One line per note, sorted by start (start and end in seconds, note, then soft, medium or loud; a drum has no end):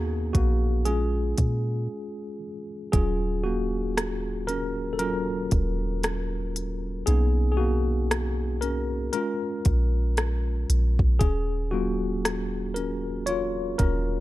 0.00 0.33 D#2 medium
0.00 0.36 A#3 medium
0.00 0.88 B3 medium
0.00 0.87 C#4 soft
0.00 0.88 D#4 medium
0.00 0.32 F#4 loud
0.00 0.85 G#4 loud
0.33 1.34 A#1 loud
0.33 0.83 A#3 medium
0.33 0.87 F#4 medium
0.33 kick medium
0.33 closed hi-hat medium
0.85 2.38 G#3 medium
0.85 2.38 C#4 medium
0.85 2.38 F4 medium
0.85 2.37 G#4 medium
0.85 closed hi-hat medium
1.38 1.88 A#2 loud
1.38 kick medium
1.38 closed hi-hat medium
2.92 5.48 D#1 loud
2.92 4.44 F#3 medium
2.92 3.42 C#4 medium
2.92 4.45 F4 medium
2.92 3.46 G#4 medium
2.92 kick loud
2.92 closed hi-hat medium
3.44 4.45 A#3 medium
3.44 4.51 F#4 medium
3.97 cross-stick loud
3.97 closed hi-hat medium
4.47 4.92 C#4 medium
4.47 4.95 A#4 loud
4.47 closed hi-hat medium
4.93 5.00 A4 medium
4.99 5.48 F#3 soft
4.99 6.52 C#4 medium
4.99 5.48 F4 medium
4.99 6.51 A#4 loud
4.99 closed hi-hat medium
5.51 7.03 D#1 loud
5.51 kick medium
5.51 closed hi-hat medium
6.03 cross-stick medium
6.03 closed hi-hat medium
6.56 closed hi-hat medium
7.06 9.10 B1 loud
7.06 7.58 A#3 medium
7.06 7.51 B3 medium
7.06 8.62 C#4 medium
7.06 9.11 D#4 medium
7.06 7.49 G#4 medium
7.06 closed hi-hat medium
7.52 7.58 G#4 medium
7.57 8.59 A#3 medium
7.57 8.57 F#4 medium
8.11 cross-stick loud
8.11 closed hi-hat medium
8.61 9.11 C#4 medium
8.61 9.10 A#4 loud
8.61 closed hi-hat medium
9.13 10.65 G#3 medium
9.13 10.66 C#4 medium
9.13 10.66 F4 medium
9.13 10.65 A#4 medium
9.13 closed hi-hat medium
9.65 10.65 A#1 medium
9.65 kick medium
9.65 closed hi-hat medium
10.17 cross-stick loud
10.17 closed hi-hat medium
10.69 10.98 A#1 loud
10.69 closed hi-hat medium
10.99 11.20 A#1 loud
10.99 kick medium
11.19 13.76 D#1 loud
11.19 11.69 C#4 medium
11.19 11.68 G#4 medium
11.19 kick loud
11.19 closed hi-hat medium
11.71 14.20 F#3 medium
11.71 12.73 A#3 medium
11.71 12.75 C#4 soft
11.71 13.27 F4 medium
11.71 12.79 F#4 medium
12.25 cross-stick loud
12.25 closed hi-hat medium
12.74 13.00 C#4 medium
12.74 12.98 A#4 medium
12.74 closed hi-hat medium
13.26 13.76 F4 medium
13.26 13.80 C#5 medium
13.26 closed hi-hat medium
13.78 14.20 D#1 medium
13.78 14.20 C#4 medium
13.78 14.20 A#4 loud
13.78 kick medium
13.78 closed hi-hat medium